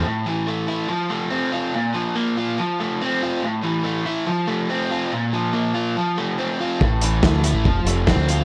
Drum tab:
HH |--------|--------|--------|--------|
SD |--------|--------|--------|--------|
BD |--------|--------|--------|--------|

HH |-x-x-x-x|
SD |--o---o-|
BD |o-o-o-o-|